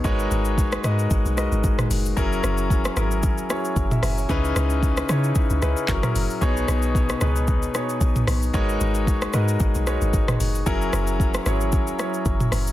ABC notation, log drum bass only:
X:1
M:4/4
L:1/16
Q:"Swing 16ths" 1/4=113
K:G#m
V:1 name="Log drum bass" clef=bass
G,,,2 G,,,4 G,,2 G,,, B,,,2 G,,, G,,,2 F,,,2 | F,,,2 F,,,4 G,,,4 z2 F,,,2 F,,,2 | C,,2 C,,4 C,2 z C,, C,, z F,,, z F,,, z | B,,,2 B,,,4 C,,4 z2 B,,,2 B,,,2 |
G,,,2 G,,,4 G,,2 G,,, B,,,2 G,,, G,,,2 F,,,2 | F,,,2 F,,,4 G,,,4 z2 F,,,2 F,,,2 |]